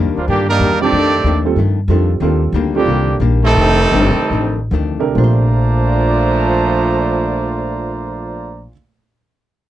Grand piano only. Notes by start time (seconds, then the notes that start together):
Already playing: G3 C4 F4 A#4
0.80 G3 C4 F4 G4
1.45 G3 C4 F4 A4
1.90 G3 C4 F4 A4
2.22 G3 C4 F4 A4
2.75 G3 C4 F4 A4
4.99 C3 D4 G4 A4 A#4
5.15 A#2 F3 A3 D4 C5